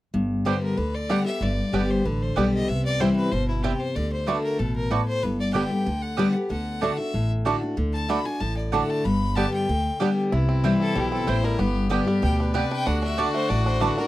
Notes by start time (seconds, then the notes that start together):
0.14 G1 G2
0.45 D3 G3 B3 D4 G4 C5 D5 G5
0.63 A#4
0.77 D2 D3 B4
0.95 D5
1.09 D3 G3 B3 D4 G4 D5 F#5 G5
1.25 B3 G4 E5
1.41 G1 G2 D5
1.73 G1 D3 G3 B3 D4 G4 D5 G5
1.91 C5
2.05 A1 D3 B4
2.22 C5
2.36 B1 D3 G3 B3 D4 G4 D5 G5
2.54 D#5
2.68 C2 C3 E5
2.85 D5
3.00 E3 G3 C4 E4 C5 G5
3.16 B4
3.32 G1 B2 C5
3.48 E4
3.63 C3 G3 C4 E4 G4 C5 G5
3.80 C5
3.95 D2 D3 D5
4.13 C5
4.26 D3 A3 D4 F#4 B4 D5 A5
4.44 A#4
4.59 A1 B2 A4
4.76 A#4
4.91 A2 A3 D4 F#4 B4 D5 A5
5.08 C5
5.23 G1 G2 B4
5.40 D5
5.53 D3 G3 B3 D4 G4 D5 G5
5.71 B3 G4
5.86 D2 D3
6.02 F#5
6.17 D3 G3 B3 D4 G4 D5 G5
6.34 B3 G4
6.50 D2 D3 F#5
6.81 D3 A3 D4 F#4 D5 A5
6.97 D4 F#4 E5
7.14 A1 A2
7.45 D3 A3 D4 F#4 D5 A5
7.61 D4 F#4
7.77 D2 D3
7.93 A5
8.09 D3 A3 D4 F#4 D5 A5 B5
8.26 D4 F#4 G#5
8.40 A1 A2 A5
8.57 D5
8.72 D3 A3 D4 F#4 D5 F#5 A5
8.90 A5
9.04 G1 G2 B5
9.36 D3 G3 B3 D4 G4 D5 G5 A5
9.54 G5
9.69 D2 D3
10.00 D3 G3 B3 D4 G4 D5 G5
10.32 C2 C3 E4
10.49 C4
10.64 E3 G3 C4 E4 C5 G5
10.80 C4 A4
10.95 B1 B2 G3 G4
11.12 C4 A4
11.27 A1 A2 C4 E4 C5 G5
11.44 G3 A#4
11.59 G1 G2 B3 G4 B4
11.89 D3 G3 B3 D4 G4 D5 G5
12.06 G3 B3 G4
12.22 D2 B2 G4 G5
12.40 D4 B4
12.54 C3 B3 G4 B4 D5 G5
12.71 D4 G5
12.86 D2 D3 D4 F#4 F#5
13.03 D4 E5
13.17 D3 A3 D4 F#4 D5 A5
13.34 A3 C5
13.49 A1 A2 D4 D5
13.66 D4 C5
13.80 D3 A3 D4 F#4 B4 D5 A5
13.98 D4 F#4 A#4